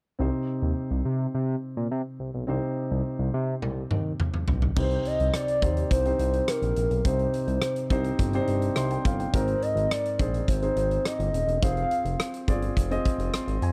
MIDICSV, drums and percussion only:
0, 0, Header, 1, 2, 480
1, 0, Start_track
1, 0, Key_signature, -3, "minor"
1, 0, Tempo, 571429
1, 164, Time_signature, 4, 2, 24, 8
1, 11526, End_track
2, 0, Start_track
2, 0, Title_t, "Drums"
2, 3044, Note_on_c, 9, 48, 49
2, 3128, Note_off_c, 9, 48, 0
2, 3281, Note_on_c, 9, 47, 64
2, 3365, Note_off_c, 9, 47, 0
2, 3525, Note_on_c, 9, 45, 74
2, 3609, Note_off_c, 9, 45, 0
2, 3642, Note_on_c, 9, 45, 70
2, 3726, Note_off_c, 9, 45, 0
2, 3760, Note_on_c, 9, 43, 95
2, 3844, Note_off_c, 9, 43, 0
2, 3882, Note_on_c, 9, 43, 81
2, 3966, Note_off_c, 9, 43, 0
2, 4002, Note_on_c, 9, 49, 81
2, 4003, Note_on_c, 9, 36, 112
2, 4086, Note_off_c, 9, 49, 0
2, 4087, Note_off_c, 9, 36, 0
2, 4122, Note_on_c, 9, 42, 42
2, 4206, Note_off_c, 9, 42, 0
2, 4243, Note_on_c, 9, 42, 77
2, 4327, Note_off_c, 9, 42, 0
2, 4366, Note_on_c, 9, 42, 50
2, 4450, Note_off_c, 9, 42, 0
2, 4482, Note_on_c, 9, 37, 97
2, 4483, Note_on_c, 9, 42, 85
2, 4566, Note_off_c, 9, 37, 0
2, 4567, Note_off_c, 9, 42, 0
2, 4604, Note_on_c, 9, 42, 52
2, 4688, Note_off_c, 9, 42, 0
2, 4723, Note_on_c, 9, 36, 81
2, 4724, Note_on_c, 9, 42, 67
2, 4807, Note_off_c, 9, 36, 0
2, 4808, Note_off_c, 9, 42, 0
2, 4844, Note_on_c, 9, 42, 51
2, 4928, Note_off_c, 9, 42, 0
2, 4964, Note_on_c, 9, 36, 83
2, 4966, Note_on_c, 9, 42, 87
2, 5048, Note_off_c, 9, 36, 0
2, 5050, Note_off_c, 9, 42, 0
2, 5085, Note_on_c, 9, 42, 47
2, 5169, Note_off_c, 9, 42, 0
2, 5201, Note_on_c, 9, 42, 80
2, 5285, Note_off_c, 9, 42, 0
2, 5321, Note_on_c, 9, 42, 48
2, 5405, Note_off_c, 9, 42, 0
2, 5443, Note_on_c, 9, 37, 95
2, 5445, Note_on_c, 9, 42, 86
2, 5527, Note_off_c, 9, 37, 0
2, 5529, Note_off_c, 9, 42, 0
2, 5563, Note_on_c, 9, 42, 46
2, 5647, Note_off_c, 9, 42, 0
2, 5680, Note_on_c, 9, 42, 61
2, 5764, Note_off_c, 9, 42, 0
2, 5803, Note_on_c, 9, 42, 44
2, 5887, Note_off_c, 9, 42, 0
2, 5921, Note_on_c, 9, 42, 96
2, 5922, Note_on_c, 9, 36, 105
2, 6005, Note_off_c, 9, 42, 0
2, 6006, Note_off_c, 9, 36, 0
2, 6040, Note_on_c, 9, 42, 42
2, 6124, Note_off_c, 9, 42, 0
2, 6162, Note_on_c, 9, 42, 77
2, 6246, Note_off_c, 9, 42, 0
2, 6280, Note_on_c, 9, 42, 46
2, 6364, Note_off_c, 9, 42, 0
2, 6397, Note_on_c, 9, 37, 104
2, 6398, Note_on_c, 9, 42, 86
2, 6481, Note_off_c, 9, 37, 0
2, 6482, Note_off_c, 9, 42, 0
2, 6517, Note_on_c, 9, 42, 55
2, 6601, Note_off_c, 9, 42, 0
2, 6637, Note_on_c, 9, 42, 61
2, 6639, Note_on_c, 9, 36, 81
2, 6721, Note_off_c, 9, 42, 0
2, 6723, Note_off_c, 9, 36, 0
2, 6756, Note_on_c, 9, 42, 53
2, 6840, Note_off_c, 9, 42, 0
2, 6880, Note_on_c, 9, 36, 85
2, 6880, Note_on_c, 9, 42, 86
2, 6964, Note_off_c, 9, 36, 0
2, 6964, Note_off_c, 9, 42, 0
2, 6998, Note_on_c, 9, 42, 46
2, 7082, Note_off_c, 9, 42, 0
2, 7119, Note_on_c, 9, 42, 74
2, 7203, Note_off_c, 9, 42, 0
2, 7240, Note_on_c, 9, 42, 50
2, 7324, Note_off_c, 9, 42, 0
2, 7358, Note_on_c, 9, 37, 99
2, 7359, Note_on_c, 9, 42, 83
2, 7442, Note_off_c, 9, 37, 0
2, 7443, Note_off_c, 9, 42, 0
2, 7480, Note_on_c, 9, 42, 47
2, 7564, Note_off_c, 9, 42, 0
2, 7603, Note_on_c, 9, 36, 93
2, 7603, Note_on_c, 9, 42, 59
2, 7687, Note_off_c, 9, 36, 0
2, 7687, Note_off_c, 9, 42, 0
2, 7725, Note_on_c, 9, 42, 48
2, 7809, Note_off_c, 9, 42, 0
2, 7843, Note_on_c, 9, 36, 109
2, 7843, Note_on_c, 9, 42, 93
2, 7927, Note_off_c, 9, 36, 0
2, 7927, Note_off_c, 9, 42, 0
2, 7960, Note_on_c, 9, 42, 44
2, 8044, Note_off_c, 9, 42, 0
2, 8084, Note_on_c, 9, 42, 76
2, 8168, Note_off_c, 9, 42, 0
2, 8205, Note_on_c, 9, 42, 49
2, 8289, Note_off_c, 9, 42, 0
2, 8328, Note_on_c, 9, 37, 105
2, 8329, Note_on_c, 9, 42, 91
2, 8412, Note_off_c, 9, 37, 0
2, 8413, Note_off_c, 9, 42, 0
2, 8446, Note_on_c, 9, 42, 54
2, 8530, Note_off_c, 9, 42, 0
2, 8563, Note_on_c, 9, 36, 87
2, 8564, Note_on_c, 9, 42, 62
2, 8647, Note_off_c, 9, 36, 0
2, 8648, Note_off_c, 9, 42, 0
2, 8685, Note_on_c, 9, 42, 50
2, 8769, Note_off_c, 9, 42, 0
2, 8804, Note_on_c, 9, 36, 87
2, 8806, Note_on_c, 9, 42, 86
2, 8888, Note_off_c, 9, 36, 0
2, 8890, Note_off_c, 9, 42, 0
2, 8924, Note_on_c, 9, 42, 47
2, 9008, Note_off_c, 9, 42, 0
2, 9042, Note_on_c, 9, 42, 74
2, 9126, Note_off_c, 9, 42, 0
2, 9164, Note_on_c, 9, 42, 50
2, 9248, Note_off_c, 9, 42, 0
2, 9286, Note_on_c, 9, 37, 97
2, 9287, Note_on_c, 9, 42, 84
2, 9370, Note_off_c, 9, 37, 0
2, 9371, Note_off_c, 9, 42, 0
2, 9406, Note_on_c, 9, 42, 50
2, 9490, Note_off_c, 9, 42, 0
2, 9526, Note_on_c, 9, 42, 62
2, 9610, Note_off_c, 9, 42, 0
2, 9647, Note_on_c, 9, 42, 46
2, 9731, Note_off_c, 9, 42, 0
2, 9765, Note_on_c, 9, 36, 106
2, 9767, Note_on_c, 9, 42, 95
2, 9849, Note_off_c, 9, 36, 0
2, 9851, Note_off_c, 9, 42, 0
2, 9885, Note_on_c, 9, 42, 42
2, 9969, Note_off_c, 9, 42, 0
2, 10004, Note_on_c, 9, 42, 77
2, 10088, Note_off_c, 9, 42, 0
2, 10124, Note_on_c, 9, 42, 51
2, 10208, Note_off_c, 9, 42, 0
2, 10246, Note_on_c, 9, 37, 104
2, 10247, Note_on_c, 9, 42, 92
2, 10330, Note_off_c, 9, 37, 0
2, 10331, Note_off_c, 9, 42, 0
2, 10362, Note_on_c, 9, 42, 54
2, 10446, Note_off_c, 9, 42, 0
2, 10483, Note_on_c, 9, 36, 83
2, 10483, Note_on_c, 9, 42, 65
2, 10567, Note_off_c, 9, 36, 0
2, 10567, Note_off_c, 9, 42, 0
2, 10602, Note_on_c, 9, 42, 53
2, 10686, Note_off_c, 9, 42, 0
2, 10725, Note_on_c, 9, 36, 81
2, 10727, Note_on_c, 9, 42, 87
2, 10809, Note_off_c, 9, 36, 0
2, 10811, Note_off_c, 9, 42, 0
2, 10846, Note_on_c, 9, 42, 46
2, 10930, Note_off_c, 9, 42, 0
2, 10963, Note_on_c, 9, 42, 75
2, 10966, Note_on_c, 9, 36, 75
2, 11047, Note_off_c, 9, 42, 0
2, 11050, Note_off_c, 9, 36, 0
2, 11084, Note_on_c, 9, 42, 48
2, 11168, Note_off_c, 9, 42, 0
2, 11202, Note_on_c, 9, 37, 96
2, 11204, Note_on_c, 9, 42, 81
2, 11286, Note_off_c, 9, 37, 0
2, 11288, Note_off_c, 9, 42, 0
2, 11321, Note_on_c, 9, 42, 46
2, 11405, Note_off_c, 9, 42, 0
2, 11441, Note_on_c, 9, 42, 61
2, 11525, Note_off_c, 9, 42, 0
2, 11526, End_track
0, 0, End_of_file